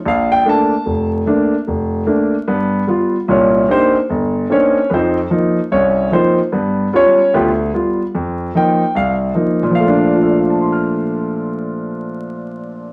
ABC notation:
X:1
M:4/4
L:1/8
Q:"Swing" 1/4=148
K:Bb
V:1 name="Grand piano"
f g a3 z3 | z8 | [_D_d]2 [Gc] z3 [Dd]2 | [CEF_c=c] z3 [_D_d]2 [CFc] z |
z2 [_D_d]2 [=B,FG=B] z3 | z2 g2 f z3 | [B,,F,A,Df]8- | [B,,F,A,Df]8 |]
V:2 name="Grand piano"
B,,,2 [A,B,D] z F,,,2 [A,B,D] z | F,,,2 [A,B,D] z [G,,=B,]2 [G,B,F] z | [C,,B,,]2 [B,CDE] z G,,,2 [B,CDE] z | F,,2 [F,B,E] z C,,2 [F,B,E] z |
[G,,=B,]2 [G,B,F] z D,,2 [G,B,F] z | F,,2 [F,B,E] z C,,2 [F,B,E] z | z2 [FAcfac'f']6- | [FAcfac'f']8 |]